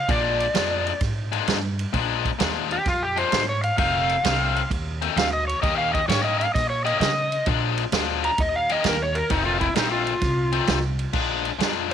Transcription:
0.08 A#1 A#2 F3 G#3 D4 D5, kick, ride
0.40 ride
0.54 F2 A#2 F3 G#3 D4, snare, ride
0.87 ride
1.01 G#2, kick, snare, ride
1.32 A#2 F3 G#3 D4, ride
1.47 G2, snare, ride
1.79 ride
1.93 A#1 A#2 F3 G#3 D4, kick, ride
2.25 kick, ride
2.39 D#2 A#2 F3 G#3 D4, snare, ride
2.71 G4, ride
2.86 F2 F4, kick, snare, ride
3.03 G4
3.16 A#2 F3 G#3 D4 C5, ride
3.32 G#2, snare, ride
3.49 C#5
3.63 F5, ride
3.77 F1 F2 D#3 A3 C4 F5, kick, ride
4.09 ride
4.24 C2 F2 D#3 A3 C4, snare, ride
4.56 ride
4.70 D#2, kick, ride
5.02 F2 D#3 A3 C4, ride
5.16 D2 F5, snare, ride
5.33 D#5
5.48 C#5, ride
5.62 D#2 D#3 A#3 C#4 G4 D#5, kick, ride
5.78 F5
5.94 D#5, kick, ride
6.08 G#2 D#3 A#3 C#4 G4 C#5, snare, ride
6.24 D#5
6.40 F5, ride
6.54 A#2 D#5, kick, snare, ride
6.70 C#5
6.85 D#3 A#3 C#4 G4 D#5, ride
7.00 C#3 D#5, snare, ride
7.32 ride
7.46 A#1 A#2 F3 G#3 D4, kick, ride
7.78 ride
7.92 D2 A#2 F3 G#3 D4, snare, ride
8.24 A#5, ride
8.38 D#2 D#5, kick, ride
8.56 F5
8.69 D#3 A#3 C#4 G4 D#5, ride
8.84 D#2 A#4, snare, ride
9.02 C#5
9.15 A#4, ride
9.30 F1 F2 D#3 A3 C4 D#4, kick, ride
9.46 F4
9.61 E4, kick, ride
9.75 A#1 F2 D#3 A3 C4 D#4, snare, ride
9.92 F4
10.07 ride
10.21 C2, kick, snare, ride
10.53 F2 D#3 A3 C4, ride
10.67 C2, snare, ride
10.99 ride
11.13 A#1 A#2 F3 G#3 D4, kick, crash
11.45 ride
11.59 F2 A#2 F3 G#3 D4, snare, ride

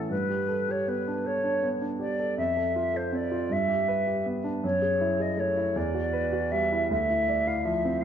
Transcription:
Already playing: A2 E3 C#4 E4 A4
0.10 G2 B4
0.30 G4
0.49 A4
0.69 G4 C#5
0.88 B3 B4
1.08 D4
1.24 A4 C#5
1.44 D4
1.63 B3
1.81 D4
1.99 G4 D5
2.19 A4
2.38 F2 E5
2.57 A4
2.76 F4
2.94 A4 C5
3.12 C4 D5
3.32 F4
3.50 G2 E5
3.68 G4
3.88 B4
4.07 G4
4.26 B3
4.44 D4
4.64 F#2 C#5
4.82 G#4
5.01 E4
5.20 G#4 D#5
5.37 A3 C#5
5.57 E4
5.76 E2 D5
5.94 F#4
6.13 B4
6.32 F#4
6.51 G3 E5
6.72 E4
6.91 D2 E5
7.10 E4
7.29 D5
7.47 E4 F5
7.64 F3 E5
7.85 C4
8.01 F5

